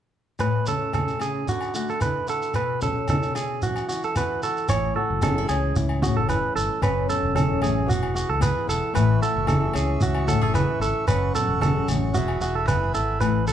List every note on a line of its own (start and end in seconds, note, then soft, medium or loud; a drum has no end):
0.39 1.44 A2 medium
0.39 0.66 B4 medium
0.39 low agogo medium
0.39 shekere medium
0.66 1.44 C#4 medium
0.66 0.93 A4 medium
0.66 high conga medium
0.66 shekere medium
0.93 1.20 B2 soft
0.93 1.20 A4 medium
0.93 high conga medium
0.93 low agogo medium
0.93 shekere medium
1.08 shekere soft
1.20 1.46 C#3 medium
1.20 1.47 G#4 medium
1.20 low agogo soft
1.20 shekere soft
1.47 2.51 D3 medium
1.47 1.74 F#4 medium
1.47 muted conga soft
1.47 shekere medium
1.61 low agogo medium
1.61 shekere soft
1.74 2.55 A3 soft
1.74 1.89 F#4 medium
1.74 muted conga soft
1.74 shekere medium
1.89 2.01 A4 medium
1.89 shekere soft
2.00 2.51 E4 medium
2.00 2.27 B4 medium
2.00 high conga medium
2.00 low agogo medium
2.00 shekere medium
2.28 3.35 F#4 soft
2.28 2.54 A4 medium
2.28 muted conga soft
2.28 shekere medium
2.42 shekere soft
2.54 3.62 B2 medium
2.54 2.81 B4 medium
2.54 muted conga soft
2.54 low agogo medium
2.54 shekere medium
2.81 3.59 C#4 soft
2.81 3.08 A4 medium
2.81 high conga medium
2.81 low conga medium
2.81 shekere medium
3.08 3.59 D4 soft
3.08 3.35 A4 medium
3.08 high conga medium
3.08 low agogo medium
3.08 shekere medium
3.23 shekere soft
3.35 3.61 G#4 medium
3.35 muted nylon-string guitar stroke soft
3.35 low agogo medium
3.35 shekere medium
3.62 5.22 E3 medium
3.62 3.88 F#4 medium
3.62 muted conga soft
3.62 low conga medium
3.62 shekere medium
3.76 low agogo medium
3.76 shekere soft
3.89 4.67 E4 medium
3.89 4.02 F#4 medium
3.89 muted conga soft
3.89 shekere medium
4.03 4.16 A4 medium
4.03 shekere soft
4.16 4.43 F#4 medium
4.16 4.42 B4 medium
4.16 high conga medium
4.16 low agogo medium
4.16 shekere medium
4.42 4.70 F#4 soft
4.42 4.68 A4 medium
4.42 muted conga soft
4.42 shekere medium
4.57 shekere soft
4.68 4.92 A1 medium
4.68 6.02 A2 medium
4.68 5.22 E4 medium
4.68 4.95 C#5 medium
4.68 muted conga soft
4.68 low agogo medium
4.68 shekere medium
4.95 6.02 F#4 medium
4.95 5.21 A4 medium
4.95 muted conga soft
5.10 5.43 F#1 medium
5.22 6.83 E3 medium
5.22 5.38 C#4 soft
5.22 5.48 A4 medium
5.22 high conga medium
5.22 low agogo medium
5.22 shekere medium
5.38 5.76 E4 soft
5.49 5.72 C#2 medium
5.49 6.80 C#4 medium
5.49 5.74 G#4 medium
5.49 low agogo medium
5.49 shekere medium
5.76 6.10 C#2 loud
5.76 6.28 E4 medium
5.76 muted clean electric guitar stroke medium
5.76 muted conga soft
5.76 shekere medium
5.89 low agogo medium
6.02 6.80 A2 medium
6.02 6.16 F#4 medium
6.02 6.56 G#4 medium
6.02 high conga medium
6.02 shekere medium
6.17 6.40 F#1 medium
6.17 6.29 A4 medium
6.29 6.80 E4 soft
6.29 6.55 B4 medium
6.29 high conga medium
6.29 low agogo medium
6.29 shekere medium
6.56 6.68 G1 medium
6.56 6.81 A4 medium
6.56 6.80 A4 soft
6.56 shekere medium
6.82 7.05 F#1 medium
6.82 7.89 F#2 medium
6.82 7.34 C#4 medium
6.82 7.08 B4 medium
6.82 low agogo medium
6.82 shekere medium
7.09 7.86 A4 medium
7.09 7.35 A4 medium
7.09 muted conga soft
7.09 low conga medium
7.09 shekere medium
7.23 7.56 E1 medium
7.35 7.85 F#3 medium
7.35 7.89 C#4 medium
7.35 7.61 A4 medium
7.35 high conga medium
7.35 low agogo medium
7.35 shekere medium
7.61 7.85 A1 medium
7.61 7.88 A3 medium
7.61 7.88 G#4 medium
7.61 high conga medium
7.61 low agogo medium
7.61 shekere medium
7.86 8.23 E1 medium
7.86 9.46 E3 medium
7.86 8.02 F#4 medium
7.86 8.14 F#4 medium
7.86 muted conga soft
7.86 low conga medium
7.86 shekere medium
8.03 low agogo medium
8.14 8.29 F#4 medium
8.14 8.40 G#4 medium
8.14 shekere medium
8.29 8.52 C#2 medium
8.29 8.42 A4 medium
8.40 8.91 B3 medium
8.40 8.92 G#4 medium
8.40 8.68 B4 medium
8.40 high conga medium
8.40 low agogo medium
8.40 shekere loud
8.67 8.80 E1 medium
8.67 8.92 E4 medium
8.67 8.94 A4 medium
8.67 muted conga soft
8.67 shekere medium
8.93 9.18 A1 medium
8.93 10.25 A2 medium
8.93 9.46 E4 medium
8.93 9.21 B4 medium
8.93 11.06 E5 medium
8.93 11.06 C#6 medium
8.93 low agogo medium
8.93 shekere medium
9.22 10.26 F#4 soft
9.22 9.47 A4 medium
9.22 muted conga soft
9.22 shekere medium
9.36 9.69 F#1 medium
9.47 11.07 E3 medium
9.47 10.00 E4 soft
9.47 9.74 A4 medium
9.47 high conga medium
9.47 low agogo medium
9.47 shekere medium
9.74 9.98 C#2 loud
9.74 11.05 C#4 medium
9.74 10.01 G#4 medium
9.74 low agogo medium
9.74 shekere medium
10.01 10.35 C#2 loud
10.01 10.53 E4 medium
10.01 10.28 F#4 medium
10.01 shekere loud
10.15 low agogo medium
10.26 11.04 A2 medium
10.26 10.41 F#4 medium
10.26 10.42 A4 medium
10.26 high conga medium
10.26 shekere medium
10.41 10.64 F#1 medium
10.41 10.81 G#4 medium
10.41 10.55 A4 medium
10.54 11.05 E4 medium
10.54 10.80 B4 medium
10.54 high conga medium
10.54 low agogo medium
10.54 shekere medium
10.80 10.92 G#1 medium
10.80 11.07 A4 medium
10.80 11.05 A4 medium
10.80 muted conga soft
10.80 shekere medium
11.07 11.30 F#1 medium
11.07 12.15 F#2 medium
11.07 11.33 B4 medium
11.07 12.13 F#5 medium
11.07 12.14 C#6 medium
11.07 muted nylon-string guitar stroke medium
11.07 muted conga soft
11.07 low agogo medium
11.07 shekere medium
11.34 12.11 A4 medium
11.34 11.60 A4 medium
11.34 muted conga soft
11.34 low conga medium
11.34 shekere medium
11.48 11.82 E1 medium
11.61 12.11 F#3 medium
11.61 12.15 C#4 medium
11.61 11.87 A4 medium
11.61 high conga loud
11.61 low agogo medium
11.61 shekere medium
11.88 12.11 A1 medium
11.88 12.15 A3 medium
11.88 high conga medium
11.88 low agogo medium
11.88 shekere medium
12.14 12.37 E1 loud
12.14 13.46 E3 medium
12.14 12.40 F#4 medium
12.14 12.40 G#4 medium
12.14 13.21 E5 medium
12.14 13.20 G#5 medium
12.14 13.21 B5 medium
12.14 muted conga soft
12.14 low conga medium
12.14 shekere medium
12.28 low agogo medium
12.41 12.65 E1 medium
12.41 12.55 F#4 medium
12.41 12.68 G#4 medium
12.41 shekere medium
12.55 12.67 A4 medium
12.67 12.92 F#1 medium
12.67 13.18 B3 medium
12.67 12.93 B4 medium
12.67 muted nylon-string guitar stroke medium
12.67 high conga medium
12.67 low agogo medium
12.67 shekere loud
12.82 13.21 G#4 soft
12.94 13.20 G#1 medium
12.94 13.18 E4 medium
12.94 13.20 A4 medium
12.94 muted conga soft
12.94 shekere medium
13.20 13.53 A1 medium
13.20 13.53 A2 medium
13.20 13.46 B4 medium
13.20 low agogo medium
13.20 shekere medium
13.47 13.53 E3 soft
13.47 13.53 A4 medium
13.47 muted conga soft
13.47 high conga medium
13.47 shekere medium